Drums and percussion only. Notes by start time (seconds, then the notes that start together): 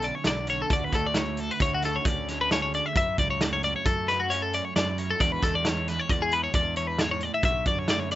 0.02 closed hi-hat
0.24 snare, closed hi-hat
0.47 closed hi-hat
0.70 kick, closed hi-hat
0.92 kick, snare, closed hi-hat
1.14 snare, closed hi-hat
1.37 closed hi-hat
1.60 kick, closed hi-hat
1.82 snare, closed hi-hat
2.05 kick, closed hi-hat
2.28 snare, closed hi-hat
2.51 snare, closed hi-hat
2.74 closed hi-hat
2.95 kick, closed hi-hat
3.18 kick, closed hi-hat
3.41 snare, closed hi-hat
3.63 closed hi-hat
3.85 kick, closed hi-hat
4.08 snare, closed hi-hat
4.31 closed hi-hat
4.53 closed hi-hat
4.76 snare, closed hi-hat
4.98 closed hi-hat
5.20 kick, closed hi-hat
5.43 kick, snare, closed hi-hat
5.65 snare, closed hi-hat
5.88 snare, closed hi-hat
6.09 kick, closed hi-hat
6.31 closed hi-hat
6.53 kick, closed hi-hat
6.76 closed hi-hat
6.98 snare, closed hi-hat
7.20 closed hi-hat
7.43 kick, closed hi-hat
7.65 kick, closed hi-hat
7.88 snare, closed hi-hat
8.11 snare, closed hi-hat